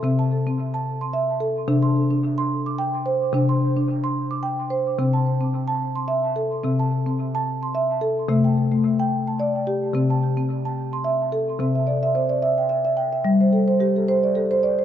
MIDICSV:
0, 0, Header, 1, 2, 480
1, 0, Start_track
1, 0, Key_signature, 0, "major"
1, 0, Tempo, 550459
1, 32, Time_signature, 3, 2, 24, 8
1, 12947, End_track
2, 0, Start_track
2, 0, Title_t, "Marimba"
2, 0, Program_c, 0, 12
2, 26, Note_on_c, 0, 48, 86
2, 34, Note_on_c, 0, 60, 81
2, 165, Note_on_c, 0, 81, 58
2, 274, Note_off_c, 0, 60, 0
2, 409, Note_on_c, 0, 60, 68
2, 513, Note_off_c, 0, 81, 0
2, 645, Note_on_c, 0, 81, 67
2, 647, Note_off_c, 0, 60, 0
2, 883, Note_on_c, 0, 84, 52
2, 886, Note_off_c, 0, 81, 0
2, 955, Note_off_c, 0, 48, 0
2, 989, Note_on_c, 0, 76, 74
2, 1224, Note_on_c, 0, 69, 68
2, 1231, Note_off_c, 0, 76, 0
2, 1232, Note_off_c, 0, 84, 0
2, 1465, Note_on_c, 0, 62, 85
2, 1467, Note_on_c, 0, 48, 96
2, 1469, Note_off_c, 0, 69, 0
2, 1591, Note_on_c, 0, 84, 62
2, 1709, Note_off_c, 0, 62, 0
2, 1836, Note_on_c, 0, 62, 64
2, 1946, Note_off_c, 0, 84, 0
2, 2074, Note_on_c, 0, 84, 72
2, 2081, Note_off_c, 0, 62, 0
2, 2321, Note_off_c, 0, 84, 0
2, 2322, Note_on_c, 0, 86, 53
2, 2395, Note_off_c, 0, 48, 0
2, 2429, Note_on_c, 0, 79, 74
2, 2667, Note_on_c, 0, 72, 72
2, 2671, Note_off_c, 0, 79, 0
2, 2671, Note_off_c, 0, 86, 0
2, 2903, Note_on_c, 0, 48, 94
2, 2910, Note_off_c, 0, 72, 0
2, 2914, Note_on_c, 0, 62, 75
2, 3044, Note_on_c, 0, 84, 58
2, 3153, Note_off_c, 0, 62, 0
2, 3284, Note_on_c, 0, 62, 65
2, 3392, Note_off_c, 0, 84, 0
2, 3520, Note_on_c, 0, 84, 71
2, 3525, Note_off_c, 0, 62, 0
2, 3756, Note_on_c, 0, 86, 51
2, 3763, Note_off_c, 0, 84, 0
2, 3833, Note_off_c, 0, 48, 0
2, 3861, Note_on_c, 0, 79, 69
2, 4101, Note_on_c, 0, 72, 64
2, 4107, Note_off_c, 0, 79, 0
2, 4108, Note_off_c, 0, 86, 0
2, 4347, Note_off_c, 0, 72, 0
2, 4350, Note_on_c, 0, 60, 75
2, 4351, Note_on_c, 0, 48, 94
2, 4477, Note_on_c, 0, 81, 55
2, 4591, Note_off_c, 0, 60, 0
2, 4714, Note_on_c, 0, 60, 63
2, 4828, Note_off_c, 0, 81, 0
2, 4950, Note_on_c, 0, 81, 67
2, 4960, Note_off_c, 0, 60, 0
2, 5193, Note_on_c, 0, 84, 53
2, 5198, Note_off_c, 0, 81, 0
2, 5277, Note_off_c, 0, 48, 0
2, 5301, Note_on_c, 0, 76, 71
2, 5545, Note_on_c, 0, 69, 66
2, 5546, Note_off_c, 0, 84, 0
2, 5547, Note_off_c, 0, 76, 0
2, 5786, Note_on_c, 0, 60, 78
2, 5789, Note_off_c, 0, 69, 0
2, 5791, Note_on_c, 0, 48, 88
2, 5925, Note_on_c, 0, 81, 62
2, 6029, Note_off_c, 0, 60, 0
2, 6158, Note_on_c, 0, 60, 72
2, 6272, Note_off_c, 0, 81, 0
2, 6402, Note_off_c, 0, 60, 0
2, 6407, Note_on_c, 0, 81, 72
2, 6646, Note_off_c, 0, 81, 0
2, 6651, Note_on_c, 0, 84, 52
2, 6717, Note_off_c, 0, 48, 0
2, 6755, Note_on_c, 0, 76, 76
2, 6988, Note_on_c, 0, 69, 73
2, 6993, Note_off_c, 0, 76, 0
2, 6995, Note_off_c, 0, 84, 0
2, 7229, Note_on_c, 0, 48, 96
2, 7229, Note_on_c, 0, 57, 77
2, 7230, Note_off_c, 0, 69, 0
2, 7363, Note_on_c, 0, 79, 56
2, 7470, Note_off_c, 0, 57, 0
2, 7603, Note_on_c, 0, 57, 68
2, 7711, Note_off_c, 0, 79, 0
2, 7844, Note_off_c, 0, 57, 0
2, 7844, Note_on_c, 0, 79, 73
2, 8084, Note_off_c, 0, 79, 0
2, 8088, Note_on_c, 0, 81, 52
2, 8155, Note_off_c, 0, 48, 0
2, 8193, Note_on_c, 0, 74, 72
2, 8432, Note_off_c, 0, 74, 0
2, 8433, Note_off_c, 0, 81, 0
2, 8433, Note_on_c, 0, 67, 72
2, 8666, Note_on_c, 0, 48, 93
2, 8672, Note_off_c, 0, 67, 0
2, 8674, Note_on_c, 0, 60, 74
2, 8809, Note_on_c, 0, 81, 59
2, 8913, Note_off_c, 0, 60, 0
2, 9046, Note_on_c, 0, 60, 62
2, 9154, Note_off_c, 0, 81, 0
2, 9285, Note_off_c, 0, 60, 0
2, 9289, Note_on_c, 0, 81, 62
2, 9527, Note_off_c, 0, 81, 0
2, 9531, Note_on_c, 0, 84, 52
2, 9594, Note_off_c, 0, 48, 0
2, 9631, Note_on_c, 0, 76, 72
2, 9871, Note_off_c, 0, 76, 0
2, 9874, Note_on_c, 0, 69, 71
2, 9875, Note_off_c, 0, 84, 0
2, 10112, Note_on_c, 0, 48, 80
2, 10113, Note_off_c, 0, 69, 0
2, 10115, Note_on_c, 0, 60, 78
2, 10248, Note_on_c, 0, 76, 54
2, 10350, Note_on_c, 0, 74, 58
2, 10353, Note_off_c, 0, 60, 0
2, 10478, Note_off_c, 0, 76, 0
2, 10488, Note_on_c, 0, 76, 69
2, 10596, Note_on_c, 0, 72, 58
2, 10711, Note_off_c, 0, 74, 0
2, 10721, Note_on_c, 0, 74, 58
2, 10726, Note_off_c, 0, 76, 0
2, 10833, Note_on_c, 0, 76, 76
2, 10967, Note_off_c, 0, 72, 0
2, 10969, Note_on_c, 0, 79, 51
2, 11036, Note_off_c, 0, 48, 0
2, 11058, Note_off_c, 0, 76, 0
2, 11068, Note_on_c, 0, 76, 62
2, 11070, Note_off_c, 0, 74, 0
2, 11192, Note_off_c, 0, 76, 0
2, 11202, Note_on_c, 0, 76, 65
2, 11298, Note_off_c, 0, 79, 0
2, 11309, Note_on_c, 0, 79, 61
2, 11435, Note_off_c, 0, 76, 0
2, 11446, Note_on_c, 0, 76, 56
2, 11550, Note_on_c, 0, 55, 93
2, 11683, Note_off_c, 0, 79, 0
2, 11685, Note_off_c, 0, 76, 0
2, 11692, Note_on_c, 0, 72, 57
2, 11795, Note_on_c, 0, 69, 59
2, 11916, Note_off_c, 0, 72, 0
2, 11927, Note_on_c, 0, 72, 68
2, 12038, Note_on_c, 0, 67, 61
2, 12165, Note_off_c, 0, 72, 0
2, 12166, Note_off_c, 0, 69, 0
2, 12174, Note_on_c, 0, 69, 59
2, 12281, Note_on_c, 0, 72, 82
2, 12407, Note_off_c, 0, 67, 0
2, 12412, Note_on_c, 0, 74, 55
2, 12475, Note_off_c, 0, 55, 0
2, 12506, Note_off_c, 0, 69, 0
2, 12516, Note_off_c, 0, 72, 0
2, 12516, Note_on_c, 0, 69, 66
2, 12651, Note_on_c, 0, 72, 74
2, 12748, Note_off_c, 0, 74, 0
2, 12759, Note_on_c, 0, 74, 64
2, 12884, Note_off_c, 0, 72, 0
2, 12886, Note_off_c, 0, 69, 0
2, 12895, Note_on_c, 0, 72, 59
2, 12947, Note_off_c, 0, 72, 0
2, 12947, Note_off_c, 0, 74, 0
2, 12947, End_track
0, 0, End_of_file